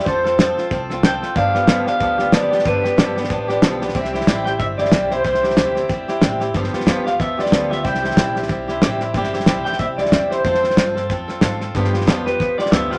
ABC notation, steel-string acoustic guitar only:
X:1
M:4/4
L:1/8
Q:"Swing" 1/4=185
K:C
V:1 name="Steel-string acoustic guitar"
[F,CFA] [CFA] [F,CFA] [CFA] [F,CFA] [CFA] [F,CFA] [CFA] | [G,,D,F,B,DG] [F,B,DG] [G,,D,F,B,DG] [F,B,DG] [F,B,DG] [F,B,DG] [G,,D,F,B,DG] [F,B,DG] | [G,,D,F,B,DG] [F,B,DG] [G,,D,F,B,DG] [F,B,DG] [F,B,DG] [F,B,DG] [G,,D,F,B,DG] [F,B,DG] | [C,G,CEG] [CEG] [C,G,CEG] [CEG] [G,CEG] [CEG] [C,G,CEG] [CEG] |
[C,G,CEG] [CEG] [C,G,CEG] [CEG] [G,CEG] [CEG] [C,G,CEG] [CEG] | [G,,D,F,B,FG] [F,B,FG] [G,,D,F,B,FG] [F,B,FG] [F,B,FG] [F,B,FG] [G,,D,F,B,FG] [F,B,FG] | [C,G,CEG] [CEG] [C,G,CEG] [CEG] [G,CEG] [CEG] [C,G,CEG] [CEG] | [C,G,CEG] [CEG] [C,G,CEG] [CEG] [G,CEG] [CEG] [C,G,CEG] [CEG] |
[F,CFA] [CFA] [F,CFA] [CFA] [F,CFA] [CFA] [F,CFA] [CFA] | [G,,D,F,B,FG] [F,B,FG] [G,,D,F,B,FG] [F,B,FG] [F,B,FG] [F,B,FG] [G,,D,F,B,FG] [F,B,FG] |]